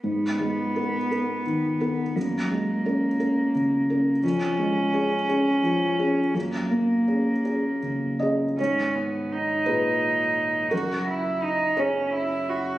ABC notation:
X:1
M:6/8
L:1/8
Q:3/8=57
K:G#m
V:1 name="Cello"
B,6 | A,6 | C6 | A,4- A, z |
C B, D4 | F E D C E F |]
V:2 name="Felt piano"
G,, G, [B,A] [B,A] D, [B,A] | F,, G, [CA] [CA] C, [CA] | ^E,, G, [CG] [CG] ^E, [CG] | F,, A, [CG] [CG] C, [CGd] |
[G,,c]3 [A,,GB]3 | [F,,A]3 [CGc]3 |]
V:3 name="Sub bass" clef=bass
z6 | z6 | z6 | z6 |
G,,,6 | F,,,6 |]